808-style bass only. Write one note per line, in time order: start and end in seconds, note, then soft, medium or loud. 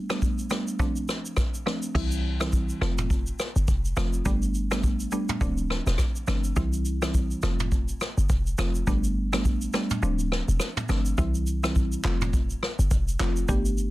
1.95 2.77 C2 loud
2.81 3.32 F1 loud
3.56 3.66 G1 medium
3.68 3.93 F1 medium
3.97 4.22 F1 medium
4.26 5.08 G1 loud
5.41 5.81 D1 loud
5.87 5.97 E1 medium
6.28 6.53 G1 medium
6.57 7.39 C2 loud
7.43 7.93 F1 loud
8.17 8.28 G1 medium
8.30 8.55 F1 medium
8.58 8.84 F1 medium
8.87 9.70 G1 loud
10.03 10.42 D1 loud
10.48 10.59 E1 medium
10.89 11.14 G1 medium
11.18 12.01 C2 loud
12.05 12.55 F1 loud
12.79 12.89 G1 medium
12.91 13.16 F1 medium
13.20 13.45 F1 medium
13.49 13.91 G1 loud